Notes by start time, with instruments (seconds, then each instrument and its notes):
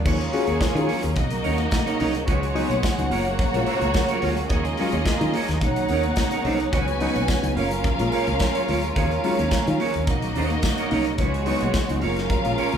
0.04 fingered electric bass D#2, string section D#3 F#3 G#3 A#3 C#4 F4 G#4 C#5, reed electric piano D#3 A#3, clean electric guitar F#4 G#4 C#5, kick, crash, muted conga, low conga
0.20 muted clean electric guitar stroke, closed hi-hat, muted conga
0.32 reed electric piano C#4 F4 F#4 G#4, clean electric guitar F#4 G#4 C#5, open hi-hat
0.47 fingered electric bass D#2, reed electric piano F#4 G#4, clean electric guitar F#4 G#4 C#5, closed hi-hat, high conga
0.61 muted clean electric guitar stroke, kick, snare, closed hi-hat, tambourine
0.75 fingered electric bass D#3, reed electric piano C#4 F4 F#4 G#4, muted clean electric guitar stroke, closed hi-hat
0.87 clean electric guitar F#4 G#4 C#5, open hi-hat, high conga, low conga
1.02 fingered electric bass D#2, reed electric piano D#3 A#3, muted clean electric guitar stroke, closed hi-hat
1.15 fingered electric bass B1, string section B2 C#3 F#3 A#3 D#4 F#4 D#5, reed electric piano C#4 D#4, muted clean electric guitar stroke, kick, closed hi-hat, muted conga
1.30 reed electric piano B2 F#3, muted clean electric guitar stroke, closed hi-hat
1.44 fingered electric bass D#2, reed electric piano A#3 C#4 D#4, clean electric guitar D#4 A#4 C#5, open hi-hat
1.58 muted clean electric guitar stroke, closed hi-hat, high conga
1.71 muted clean electric guitar stroke, kick, snare, closed hi-hat, tambourine, muted conga
1.86 clean electric guitar D#4 A#4 C#5, closed hi-hat, muted conga
1.99 fingered electric bass C2, reed electric piano A#3 C#4 D#4, clean electric guitar D#4 A#4 C#5, open hi-hat, low conga
2.15 muted clean electric guitar stroke, closed hi-hat
2.27 fingered electric bass C#2, reed electric piano C#3, string section F#3 G#3 F#4 C#5 F#5, clean electric guitar F#4 B4 C#5, kick, closed hi-hat, low conga
2.41 muted clean electric guitar stroke, closed hi-hat
2.54 reed electric piano F#3 B3 D#4, clean electric guitar F#4 B4 C#5, open hi-hat
2.70 fingered electric bass B1, clean electric guitar F#4 B4 C#5, closed hi-hat, high conga
2.83 muted clean electric guitar stroke, kick, snare, closed hi-hat, tambourine, muted conga
2.98 fingered electric bass C#2, reed electric piano F#3 B3 D#4, muted clean electric guitar stroke, closed hi-hat, muted conga
3.11 fingered electric bass F#1, string section C#3 A#3 C#4 F#4 C#5, clean electric guitar F4 A#4 C#5, open hi-hat, high conga, low conga
3.25 reed electric piano F#3, muted clean electric guitar stroke, closed hi-hat
3.39 reed electric piano F#3, muted clean electric guitar stroke, kick, closed hi-hat, muted conga
3.54 fingered electric bass A#1, reed electric piano G#3 A#3 F4, muted clean electric guitar stroke, closed hi-hat, muted conga
3.66 reed electric piano A#3 F4, clean electric guitar F4 A#4 C#5, open hi-hat
3.82 fingered electric bass C#2, muted clean electric guitar stroke, closed hi-hat, high conga
3.94 reed electric piano A#3 F4, muted clean electric guitar stroke, kick, snare, closed hi-hat, tambourine, muted conga
4.08 reed electric piano F#3, clean electric guitar F4 A#4 C#5, closed hi-hat, muted conga
4.22 fingered electric bass D2, reed electric piano G#3 A#3 F4, clean electric guitar F4 A#4 C#5, open hi-hat, low conga
4.37 muted clean electric guitar stroke, closed hi-hat
4.50 fingered electric bass D#2, string section D#3 G#3 A#3 F4 G#4 D#5, reed electric piano D#3, clean electric guitar F#4 G#4 C#5, kick, closed hi-hat, muted conga, low conga
4.65 muted clean electric guitar stroke, closed hi-hat, muted conga
4.77 reed electric piano F#3 G#3 C#4 F4, clean electric guitar F#4 G#4 C#5, open hi-hat
4.92 fingered electric bass D#2, reed electric piano C#4 F4, clean electric guitar F#4 G#4 C#5, closed hi-hat, high conga
5.05 muted fingered electric bass stroke, muted clean electric guitar stroke, kick, snare, closed hi-hat, tambourine, muted conga
5.21 fingered electric bass D#3, reed electric piano F#3 G#3 C#4 F4, muted clean electric guitar stroke, closed hi-hat, muted conga
5.33 clean electric guitar F#4 G#4 C#5, open hi-hat, high conga, low conga
5.48 fingered electric bass D#2, reed electric piano D#3, muted clean electric guitar stroke, snare, closed hi-hat
5.61 fingered electric bass B1, string section C#3 A#3 B3 D#4 C#5 F#5, reed electric piano C#4 D#4, muted clean electric guitar stroke, kick, closed hi-hat, muted conga
5.76 reed electric piano B2 F#3, muted clean electric guitar stroke, closed hi-hat
5.88 fingered electric bass D#2, reed electric piano A#3 C#4 D#4, clean electric guitar D#4 A#4, open hi-hat
5.93 clean electric guitar C#5
6.03 muted clean electric guitar stroke, closed hi-hat, high conga
6.16 muted clean electric guitar stroke, kick, snare, closed hi-hat, tambourine
6.31 clean electric guitar D#4 A#4 C#5, closed hi-hat, muted conga
6.45 fingered electric bass C2, reed electric piano A#3 C#4 D#4, clean electric guitar D#4 A#4 C#5, open hi-hat, low conga
6.60 muted clean electric guitar stroke, closed hi-hat
6.72 fingered electric bass C#2, string section C#3 F#3 G#3 C#4 F#4 B4 G#5, reed electric piano C#3, clean electric guitar F#4 B4 C#5, kick, closed hi-hat, muted conga, low conga
6.87 muted clean electric guitar stroke, closed hi-hat, muted conga
7.00 reed electric piano F#3 B3 D#4, clean electric guitar F#4 B4 C#5, open hi-hat
7.15 fingered electric bass B1, reed electric piano B3 D#4, clean electric guitar F#4 B4 C#5, closed hi-hat, high conga
7.28 muted clean electric guitar stroke, kick, snare, closed hi-hat, tambourine, muted conga
7.43 fingered electric bass C#2, reed electric piano F#3 B3 D#4, muted clean electric guitar stroke, closed hi-hat
7.55 fingered electric bass F#1, string section F3 A#3 C#4 F4 A#4 F5, clean electric guitar F4 A#4, open hi-hat, high conga, low conga
7.59 clean electric guitar C#5
7.71 reed electric piano F#3, muted clean electric guitar stroke, closed hi-hat
7.84 reed electric piano F#3, muted clean electric guitar stroke, kick, closed hi-hat, muted conga
7.98 fingered electric bass A#1, reed electric piano G#3 A#3 F4, muted clean electric guitar stroke, closed hi-hat, muted conga
8.12 reed electric piano A#3 F4, clean electric guitar F4 A#4 C#5, open hi-hat
8.27 fingered electric bass C#2, muted clean electric guitar stroke, closed hi-hat, high conga
8.39 reed electric piano A#3 F4, muted clean electric guitar stroke, kick, snare, closed hi-hat, tambourine, muted conga
8.55 reed electric piano F#3, clean electric guitar F4 A#4 C#5, closed hi-hat
8.68 fingered electric bass D2, reed electric piano G#3 A#3 F4, clean electric guitar F4 A#4 C#5, open hi-hat, low conga
8.83 muted clean electric guitar stroke, closed hi-hat
8.95 fingered electric bass D#2, reed electric piano D#3, string section D#3 G#3 C#4 A#4 F5, clean electric guitar F#4 G#4 C#5, kick, closed hi-hat, low conga
9.11 muted clean electric guitar stroke, closed hi-hat, muted conga
9.24 reed electric piano F#3 G#3 C#4 F4, clean electric guitar F#4 G#4 C#5, open hi-hat
9.38 fingered electric bass D#2, reed electric piano C#4 F4, clean electric guitar F#4 G#4 C#5, closed hi-hat, high conga
9.51 muted fingered electric bass stroke, muted clean electric guitar stroke, kick, snare, closed hi-hat, tambourine
9.66 fingered electric bass D#3, reed electric piano F#3 G#3 C#4 F4, muted clean electric guitar stroke, closed hi-hat, muted conga
9.78 clean electric guitar F#4 G#4 C#5, open hi-hat, high conga, low conga
9.94 fingered electric bass D#2, reed electric piano D#3, muted clean electric guitar stroke, closed hi-hat
10.07 fingered electric bass B1, string section B2 C#3 A#3 D#4 F#4 D#5, reed electric piano C#4 D#4, muted clean electric guitar stroke, kick, closed hi-hat
10.22 reed electric piano B2 F#3, muted clean electric guitar stroke, closed hi-hat, muted conga
10.35 fingered electric bass D#2, reed electric piano A#3 C#4 D#4, clean electric guitar D#4 A#4 C#5, open hi-hat
10.50 muted clean electric guitar stroke, closed hi-hat, high conga
10.62 muted clean electric guitar stroke, kick, snare, closed hi-hat, tambourine, muted conga
10.78 clean electric guitar D#4 A#4 C#5, closed hi-hat, muted conga
10.91 fingered electric bass C2, reed electric piano A#3 C#4 D#4, clean electric guitar D#4 A#4 C#5, open hi-hat, low conga
11.05 muted clean electric guitar stroke, closed hi-hat
11.18 fingered electric bass C#2, reed electric piano C#3, string section G#3 B3 F#4 C#5, clean electric guitar F#4 B4 C#5, kick, closed hi-hat, muted conga, low conga
11.33 muted clean electric guitar stroke, closed hi-hat, muted conga
11.46 reed electric piano F#3 B3 D#4, clean electric guitar F#4 B4 C#5, open hi-hat
11.61 fingered electric bass B1, reed electric piano B3 D#4, clean electric guitar F#4 B4 C#5, closed hi-hat, high conga
11.74 muted clean electric guitar stroke, kick, snare, closed hi-hat, tambourine
11.89 fingered electric bass C#2, reed electric piano F#3 B3 D#4, muted clean electric guitar stroke, closed hi-hat, muted conga
12.02 fingered electric bass F#1, string section F3 A#3 C#4 F4 A#4 F5, clean electric guitar F4 A#4 C#5, open hi-hat, high conga, low conga
12.17 reed electric piano F#3, muted clean electric guitar stroke, snare, closed hi-hat
12.30 reed electric piano F#3, muted clean electric guitar stroke, kick, closed hi-hat, muted conga
12.44 fingered electric bass A#1, reed electric piano G#3 A#3 F4, muted clean electric guitar stroke, closed hi-hat, muted conga
12.57 reed electric piano A#3 F4, clean electric guitar F4 A#4 C#5, open hi-hat
12.72 fingered electric bass C#2, muted clean electric guitar stroke, closed hi-hat, high conga